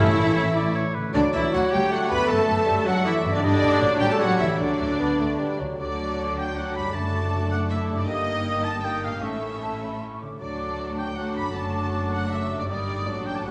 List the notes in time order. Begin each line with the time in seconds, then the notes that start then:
Already playing: A1 A2 E3 A3 C#4 E4 C#5 E5
0.36 C#5
0.55 D5
0.75 C#5
0.94 D3 B4
1.01 A3
1.06 D4 F#4
1.13 D2 D3 F#3 D4 D5
1.33 D2 E3 E4 E5
1.53 D2 F#3 F#4 C#5 F#5
1.71 D2 G3 G4 G5
1.91 F#3 A3 F#4 D5 F#5
2.10 D2 F#2 B3 B4 B5
2.16 A3
2.20 D4
2.25 A4 A5
2.29 F#2 A3 A4 E5 A5
2.49 F#2
2.66 F#2 G3
2.86 F#2 F#3 F#4 F#5
3.03 E3 A3 E4 D5 E5
3.24 F#2 G2
3.29 A#3 D4 D5
3.34 D3 D4 D#4 D5
3.38 G4
3.42 G2 D3 G3 D4 D5 D#5
3.62 G2 A2
3.67 A3
3.71 D4
3.76 F#4
3.80 A1 F#3 D5
3.99 A1 A2 G3 G4 G5
4.05 A3 A4 A5
4.10 A3 G4 A4 A5
4.18 F#3 G3 F#4 C#5 F#5
4.37 A1 D3 E3 E4 E5
4.45 A3
4.50 D4
4.54 F#4 D5
4.58 D2 D3 F#3 D4 D5
4.80 D2
4.99 D2 B3
5.20 D2 A3
5.39 G3
5.60 D2 D3 F#3
5.66 A3
5.71 D4
5.75 F#4
5.79 D2 D3 F#3 D4 F#4 A4 D5 D6
6.38 G5
6.56 F#3 D4 F#4 A4 D5 F#5 D6
6.75 F#2 G3 B5
6.81 A3
6.86 D4
6.90 A3 D4 A4 A5
6.95 F#1 F#2 A3 F#4 A4 D5 A5 D6
7.51 F#5
7.69 E4 E5
7.90 G2
7.94 A#3
7.98 D#4 D5
8.03 G4 D#5
8.07 G1 G2 A#3 D#4 D#5 D#6
8.64 A5
8.83 A#3 D#4 G4 D#5 G5 D#6
9.03 A2 F5
9.08 A3
9.13 C#4
9.17 E4 C#6
9.22 A1 A2 A3 C#4 E4 A4 E5
9.60 A5
9.80 B5
10.01 C#6
10.20 D3 D6
10.27 A3
10.31 D4
10.36 F#4 D5 D6
10.40 D2 F#3 A3 D4 F#4 A4 D5
10.98 G5
11.16 F#3 A3 D4 F#4 A4 F#5 D6
11.35 F#2 B5
11.41 A3
11.46 D4
11.50 A4
11.54 F#1 F#2 F#3 A3 D4 F#4 A4 A5 D6
12.12 F#5
12.30 E5
12.51 G2
12.56 A#3 D5
12.60 D#4
12.65 G4 D5
12.69 G1 G2 G3 A#3 D#4 A#4 D#6
12.89 A2 D#4
12.93 A3
12.98 D4
13.03 F#4
13.07 A1 A2 F#3 D4 F#4 A4 D6
13.26 A2 G5
13.33 A3 A5
13.37 C#4
13.42 A1 G4 F#5
13.46 A2 G3 A3 C#4 A4 C#6